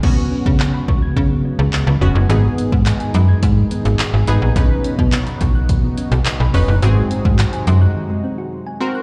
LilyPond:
<<
  \new Staff \with { instrumentName = "Synth arpeggio sound" } { \time 4/4 \key des \mixolydian \tempo 4 = 106 ges16 ces'16 des'16 aes'16 r16 ces'''16 des'''16 aes'''16 ges16 ces'16 des'16 aes'16 r16 ces'''16 des'''16 aes'''16 | ees16 aes16 ces'16 aes'16 r16 aes''16 ces'''16 aes'''16 ees16 aes16 ces'16 aes'16 r16 aes''16 ces'''16 aes'''16 | dis16 b16 cis'16 fis'16 r16 b''16 cis'''16 fis'''16 dis16 b16 cis'16 fis'16 r16 b''16 cis'''16 fis'''16 | ees16 aes16 c'16 ges'16 r16 aes''16 c'''16 ges'''16 ees16 aes16 c'16 ges'16 r16 aes''16 c'''16 ges'''16 | }
  \new Staff \with { instrumentName = "Analog polysynth" } { \time 4/4 \key des \mixolydian <ces' des' ges'>4. r2 <ces' des' ges'>8 | <ces' ees' aes'>4. r2 <ces' ees' aes'>8 | <cis' dis' b'>4. r2 <cis' dis' b'>8 | <c' ges' aes'>4. r2 <c' ges' bes'>8 | }
  \new Staff \with { instrumentName = "Analog synth pad" } { \clef bass \time 4/4 \key des \mixolydian << { <des ges ces' ges'>1 | <ces ees ees' aes'>1 | <cis fis dis' fis'>1 | <c ges ees' ges'>1 | } \\ { aes1~ | aes1 | b1 | aes1 | } >> }
  \new Staff \with { instrumentName = "FM bass" } { \clef bass \time 4/4 \key des \mixolydian des,8 r16 des8 r16 des,8 des8 r16 des,16 r16 des,16 f,,16 ges,,16 | aes,,8 r16 aes,8 r16 ges,8 aes,8 r16 aes,,16 r16 aes,,16 aes,,16 bes,,16 | b,,8 r16 b,8 r16 b,,8 b,8 r16 b,,16 r16 b,,16 f,,16 fis,,16 | aes,,8 r16 aes,8 r16 ges,8 r2 | }
  \new DrumStaff \with { instrumentName = "Drums" } \drummode { \time 4/4 <cymc bd>8. bd16 hc8 bd8 bd4 hc4 | hh8 hh16 bd16 <hc hh>16 hh16 hh8 <hh bd>8 hh16 hh16 <hc hh>8 hh8 | <hh bd>8 hh16 bd16 <hc hh>16 hh16 <hh bd>8 <hh bd>8 hh16 hh16 <hc hh>8 hho8 | hh8 hh16 bd16 <hc hh>16 hh16 hh8 r4 r4 | }
>>